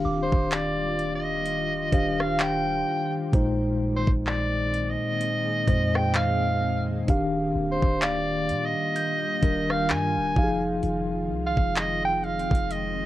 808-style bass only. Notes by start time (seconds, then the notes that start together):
0.05 D#1
0.33 D#1
1.93 D#1
3.33 A#1
4.07 A#1
5.68 F2
7.08 D#1
7.55 D#1
7.82 D#1
8.49 A#2
9.43 D#1
9.90 G2
10.17 D#1
10.36 F1
10.83 F1
11.30 C2
11.57 F1
12.51 F1